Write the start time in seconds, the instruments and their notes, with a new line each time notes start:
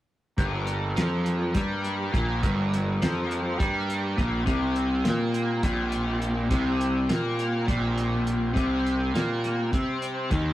0.37 picked electric bass G1, overdriven electric guitar G2, transistor combo organ G3 A#3 D4 A#4, kick, closed hi-hat
0.67 closed hi-hat
0.96 picked electric bass F2, overdriven electric guitar F3, snare, closed hi-hat
1.26 closed hi-hat
1.54 picked electric bass G2, overdriven electric guitar G3, kick, snare, closed hi-hat
1.84 closed hi-hat
2.12 picked electric bass A#1, overdriven electric guitar A#2, kick, closed hi-hat
2.42 picked electric bass G1, overdriven electric guitar G2, kick, closed hi-hat
2.74 snare, closed hi-hat
3.01 picked electric bass F2, overdriven electric guitar F3, snare, closed hi-hat
3.31 closed hi-hat
3.58 picked electric bass G2, overdriven electric guitar G3, kick, closed hi-hat
3.90 closed hi-hat
4.16 picked electric bass A#1, overdriven electric guitar A#2, kick, closed hi-hat
4.46 picked electric bass C2, overdriven electric guitar C3, transistor combo organ C3 G4 C5, kick, closed hi-hat
4.76 closed hi-hat
5.05 picked electric bass A#2, overdriven electric guitar A#3, snare, closed hi-hat
5.34 closed hi-hat
5.63 picked electric bass A#1, overdriven electric guitar A#2, kick, closed hi-hat
5.92 closed hi-hat
6.22 closed hi-hat
6.50 picked electric bass C2, overdriven electric guitar C3, kick, closed hi-hat
6.81 closed hi-hat
7.09 picked electric bass A#2, overdriven electric guitar A#3, snare, closed hi-hat
7.39 closed hi-hat
7.67 picked electric bass A#1, overdriven electric guitar A#2, kick, closed hi-hat
7.98 closed hi-hat
8.27 closed hi-hat
8.53 picked electric bass C2, overdriven electric guitar C3, kick, closed hi-hat
8.87 closed hi-hat
9.14 picked electric bass A#2, overdriven electric guitar A#3, snare, closed hi-hat
9.44 snare, closed hi-hat
9.72 picked electric bass C3, overdriven electric guitar C4, kick, closed hi-hat
10.02 closed hi-hat
10.30 picked electric bass D#2, overdriven electric guitar D#3, kick, closed hi-hat